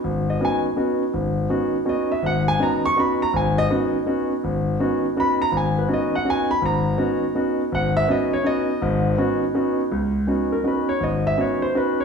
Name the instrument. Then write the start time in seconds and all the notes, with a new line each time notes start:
grand piano
0.04 G#1
0.30 D#5
0.40 B3 C#4 D#4 F#4
0.45 G#5
0.76 B3 C#4 D#4 F#4
1.14 G#1
1.49 B3 C#4 D#4 F#4
1.85 B3 C#4 D#4 F#4
1.89 D#5
2.12 E5
2.23 G#1 F#5
2.48 G#5
2.59 B3 C#4 D#4 F#4 A#5
2.86 C#6
2.96 B3 C#4 D#4 F#4 B5
3.22 A#5
3.33 G#1 G#5
3.58 D#5
3.70 B3 C#4 D#4 F#4
4.06 B3 C#4 D#4 F#4
4.44 G#1
4.80 B3 C#4 D#4 F#4
5.16 B3 C#4 D#4 F#4 B5
5.42 A#5
5.52 G#1
5.57 G#5
5.79 B4
5.88 B3 C#4 D#4 F#4
5.93 D#5
6.15 F#5
6.25 B3 C#4 D#4 F#4
6.30 G#5
6.51 B5
6.62 G#1 A#5
6.97 B3 C#4 D#4 F#4
7.35 B3 C#4 D#4 F#4
7.72 G#1 F#5
7.97 E5
8.08 B3 C#4 D#4 F#4 D#5
8.33 C#5
8.44 B3 C#4 D#4 F#4 D#5
8.82 G#1 G#2
9.17 B3 C#4 D#4 F#4
9.54 B3 C#4 D#4 F#4
9.92 C#2
10.27 B3 C#4 D#4 F#4
10.52 A#4
10.64 B3 C#4 D#4 F#4 B4
10.89 C#5
11.00 G#1 D#5
11.27 E5
11.37 B3 C#4 D#4 F#4 C#5
11.62 C5
11.74 B3 C#4 D#4 F#4 B4
12.00 C#5